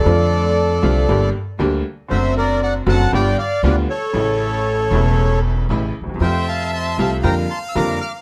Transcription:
<<
  \new Staff \with { instrumentName = "Bandoneon" } { \time 4/4 \key a \phrygian \tempo 4 = 117 << { d''2~ d''8 r4. | e''8 d''8 fis''8 a''8 g''8 f''8 d''8 cis''8~ | cis''2~ cis''8 r4. | g''8 a''8 c'''8 a''8 bes''8 c'''16. e'''32 d'''8 f'''8 | } \\ { a'2~ a'8 r4. | c''8 bes'8 d''8 fis''8 d''8 d''8 b'8 a'8~ | a'2~ a'8 r4. | c''8 f''8 a''8 f''8 g''8 a''8 bes''8 d'''8 | } >> }
  \new Staff \with { instrumentName = "Violin" } { \time 4/4 \key a \phrygian r1 | r1 | r1 | e''2 f''2 | }
  \new Staff \with { instrumentName = "String section" } { \time 4/4 \key a \phrygian <a d' f'>4. <a d' f'>8 <bes d' g'>8 r8 <bes d' g'>8 r8 | <c' d' fis'>4. <c' d' fis'>8 <b f' g'>8 r8 <b f' g'>8 r8 | <cis' e' a'>4. <cis' e' a'>4. <cis' e' a'>8 r8 | <c' f' a'>4. <c' f' a'>8 <d' g' bes'>8 r8 <d' g' bes'>8 r8 | }
  \new Staff \with { instrumentName = "Upright piano" } { \clef bass \time 4/4 \key a \phrygian <f, d f a c' f'>4. <c, c d a c' f'>8 <g,, g, d g bes g'>8 r8 <d, d g bes g'>8 r8 | <fis, d fis a c' fis'>4. <fis, d fis a c' fis'>8 <g,, g, d g b f'>8 r8 <d, d g b f'>8 r8 | <a,, a, cis e a e'>4. <e,, e, cis e a e'>4. <a,, a, cis e a e'>8 r32 d,32 ees,32 e,32 | <f, c f a f'>4. <c, c f a f'>8 <f, d f g bes f'>8 r8 <f, d f g bes f'>8 r8 | }
  \new Staff \with { instrumentName = "Upright bass" } { \clef bass \time 4/4 \key a \phrygian f,4~ f,16. r32 c,16. r32 g,,16. r8 r32 d,16. r8 r32 | fis,,4~ fis,,16. r32 fis,,16. r32 g,,16. r8 r32 d,16. r8 r32 | a,,4~ a,,16. r32 e,,4~ e,,16. r32 a,,16. r16 d,32 ees,32 e,32 | f,4~ f,16. r32 c,16. r32 f,16. r8 r32 f,16. r8 r32 | }
>>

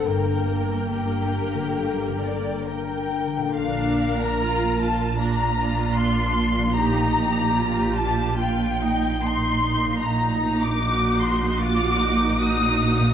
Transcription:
<<
  \new Staff \with { instrumentName = "Violin section" } { \time 4/4 \key g \minor \tempo 4 = 75 g''2. g''4 | \key bes \major f''8. bes''8. a''8 bes''4 c'''4 | bes''4. a''8 g''4 c'''4 | bes''8. d'''8. c'''8 d'''4 ees'''4 | }
  \new Staff \with { instrumentName = "Violin section" } { \time 4/4 \key g \minor bes'4 g'4. d''8 <bes' g''>4 | \key bes \major f''8. bes''8. a''8 bes''4 c'''4 | bes''4. a''8 g''4 c'''4 | bes''8. d'''8. c'''8 d'''4 ees'''4 | }
  \new Staff \with { instrumentName = "Viola section" } { \time 4/4 \key g \minor << { bes'2.~ bes'8. r16 | \key bes \major bes'2 f'2 | g'8 g'4. f'8 ees'8 ees'4~ | ees'4 ges'4 f'8 ees'8 ees'4 | } \\ { bes2.~ bes8. r16 | d'4 f'8 f'8 d'8 d'4. | ees'4 f'2. | ees'2 ges'4 ges'4 | } >> }
  \new Staff \with { instrumentName = "Harp" } { \time 4/4 \key g \minor \tuplet 3/2 { <g, d'>8 bes8 d'8 g'8 d'8 d8 bes8 d8 d'8 g'8 d'8 d8 } | \key bes \major <bes, bes d' f'>1 | <bes, bes ees' g'>1 | <bes, bes ees' ges'>1 | }
  \new Staff \with { instrumentName = "Cello section" } { \clef bass \time 4/4 \key g \minor g,2.~ g,8. r16 | \key bes \major bes,1~ | bes,1 | bes,1 | }
  \new Staff \with { instrumentName = "Double bass section" } { \clef bass \time 4/4 \key g \minor g,,2.~ g,,8. r16 | \key bes \major bes,,1~ | bes,,1 | bes,,1 | }
>>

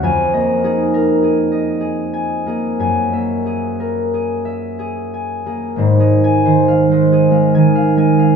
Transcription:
<<
  \new Staff \with { instrumentName = "Harp" } { \time 3/4 \key aes \major \tempo 4 = 66 << { aes''2. | aes''2.~ | aes''8 aes''2~ aes''8 | } \\ { \tuplet 3/2 { r8 ees''8 aes'8 bes'8 aes'8 ees''8 aes'8 aes''8 aes'8~ } | \tuplet 3/2 { aes'8 fes''8 aes'8 bes'8 aes'8 fes''8 aes'8 aes''8 aes'8 } | c''16 aes'8 c''16 f''16 c''16 aes'16 f''16 aes''16 f''16 aes''16 f''16 | } >> }
  \new Staff \with { instrumentName = "Harp" } { \clef bass \time 3/4 \key aes \major \tuplet 3/2 { f,8 bes8 ees'8~ } ees'4~ \tuplet 3/2 { ees'4 bes8 } | \tuplet 3/2 { ges,8 bes4~ } bes4~ \tuplet 3/2 { bes4 bes8 } | <aes,, aes,>16 aes8 ees8 aes8 aes16 ees8 aes8 | }
>>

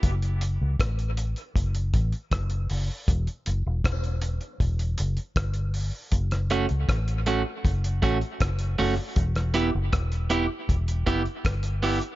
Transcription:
<<
  \new Staff \with { instrumentName = "Clean electric guitar" } { \time 4/4 \key fis \phrygian \tempo 4 = 79 r1 | r1 | r8 <a cis' fis'>8 r8 <a cis' fis'>8 r8 <a cis' fis'>8 r8 <a cis' fis'>8 | r8 <b e' g'>8 r8 <b e' g'>8 r8 <b e' g'>8 r8 <b e' g'>8 | }
  \new Staff \with { instrumentName = "Fingered electric bass" } { \clef bass \time 4/4 \key fis \phrygian fis,,8. cis,16 a,,8. r16 fis,,8 a,,16 r16 fis,,8 fis,,16 r16 | e,,16 r16 fis,,16 e,,16 e,,8. r16 e,,8 fis,,16 r16 g,,8. r16 | fis,,8. cis,16 a,,8. r16 fis,,8 a,,16 r16 fis,,8 fis,,16 r16 | e,,8. fis,,16 e,,8. r16 e,,8 r8 g,,8. r16 | }
  \new DrumStaff \with { instrumentName = "Drums" } \drummode { \time 4/4 <hh bd>16 hh16 hh8 <hh bd ss>16 hh16 hh16 hh16 <hh bd>16 hh16 <hh bd>16 hh16 <hh bd ss>16 hh16 hho8 | <hh bd>16 hh16 hh8 <hh bd ss>16 hh16 hh16 hh16 <hh bd>16 hh16 hh16 hh16 <hh bd ss>16 hh16 hho8 | <hh bd>16 <hh ss>16 hh16 hh16 <hh bd ss>16 hh16 hh8 <hh bd>16 hh16 <hh bd>16 hh16 <hh bd ss>16 hh16 hho8 | <hh bd>16 <hh ss>16 hh8 <hh bd ss>16 hh16 hh8 <hh bd>16 hh16 <hh bd>16 hh16 <hh bd ss>16 hh16 hho16 hh16 | }
>>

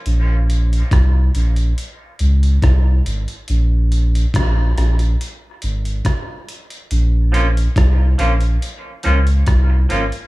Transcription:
<<
  \new Staff \with { instrumentName = "Clean electric guitar" } { \time 4/4 \key bes \minor \tempo 4 = 70 r1 | r1 | r8 <f bes des' f'>8 r8 <f bes des' f'>8 r8 <f bes des' f'>8 r8 <f bes des' f'>8 | }
  \new Staff \with { instrumentName = "Sub bass" } { \clef bass \time 4/4 \key bes \minor bes,,4 c,8 bes,,8 r8 des,8 c,8 aes,,16 r16 | bes,,4 bes,,8 bes,,8 r8 aes,,8 r4 | bes,,4 c,8 bes,,8 r8 des,8 c,8 aes,,16 r16 | }
  \new DrumStaff \with { instrumentName = "Drums" } \drummode { \time 4/4 hh8 hh16 hh16 <hh bd ss>8 hh16 hh16 hh8 hh16 hh16 <hh bd ss>8 hh16 hh16 | hh8 hh16 hh16 <hh bd ss>8 <hh ss>16 hh16 hh8 hh16 hh16 <hh bd ss>8 hh16 hh16 | hh8 hh16 hh16 <hh bd ss>8 hh16 hh16 hh8 hh16 hh16 <hh bd ss>8 hh16 hh16 | }
>>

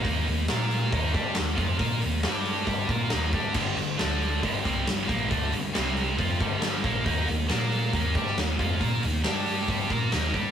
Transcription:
<<
  \new Staff \with { instrumentName = "Distorted electric guitar" } { \time 4/4 \key ees \lydian \tempo 4 = 137 <ees bes ees'>8 <ees bes>8 <bes f' bes'>4 <ees bes ees'>8 <g d' g'>8 <ees bes>8 <f c' f'>8 | <bes f' bes'>8 <ees bes>8 <g d' g'>4 <g d' g'>8 <bes f' bes'>8 <ees bes ees'>8 <g d' g'>8 | <g, d g>8 <g, d>8 <d a d'>4 <g, d g>8 <c g c'>8 <g, d>8 <bes, f bes>8 | <d a d'>8 <g, d>8 <c g c'>4 <f c' f'>8 <g, d g>4 <bes, f bes>8 |
<ees bes ees'>8 <ees bes>8 <bes f' bes'>4 <ees bes ees'>8 <g d' g'>8 <ees bes>8 <f c' f'>8 | <bes f' bes'>8 <ees bes>8 <g d' g'>4 <g d' g'>8 <bes f' bes'>8 <ees bes ees'>8 <g d' g'>8 | }
  \new Staff \with { instrumentName = "Fingered electric bass" } { \clef bass \time 4/4 \key ees \lydian ees,8 ees,8 bes,4 ees,8 g,8 ees,8 f,8 | bes,8 ees,8 g,4 g,8 bes,8 ees,8 g,8 | g,,8 g,,8 d,4 g,,8 c,8 g,,8 bes,,8 | d,8 g,,8 c,4 f,8 g,,4 bes,,8 |
ees,8 ees,8 bes,4 ees,8 g,8 ees,8 f,8 | bes,8 ees,8 g,4 g,8 bes,8 ees,8 g,8 | }
  \new DrumStaff \with { instrumentName = "Drums" } \drummode { \time 4/4 <hho bd>8 hho8 <hho sn>8 hho8 <hho bd>8 <hho bd>8 <hho sn>8 <hho bd>8 | <hho bd>8 hho8 <hho sn>8 hho8 <hho bd>8 <hho bd>8 <hho sn>8 <hho bd>8 | <cymc bd>8 hho8 <hho sn>8 hho8 <hho bd>8 <hho bd>8 <hho sn>8 <hho bd>8 | <hho bd>8 hho8 <hho sn>8 hho8 <hho bd>8 <hho bd>8 <hho sn>8 <hho bd>8 |
<hho bd>8 hho8 <hho sn>8 hho8 <hho bd>8 <hho bd>16 sn16 <hho sn>8 <hho bd>8 | <hho bd>8 hho8 <hho sn>8 hho8 <hho bd>8 <hho bd>8 <hho sn>8 <hho bd>8 | }
>>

